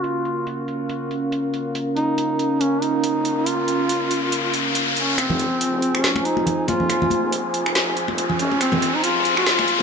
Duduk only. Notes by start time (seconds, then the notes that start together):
0.04 F4
1.96 D#4
2.61 C#4
2.82 D#4
3.47 F4
4.97 C#4
5.18 C4
6.03 C#4
6.25 D#4
6.68 F4
8.40 C#4
8.61 C4
8.95 D#4
9.04 F4
9.37 F#4
9.47 F4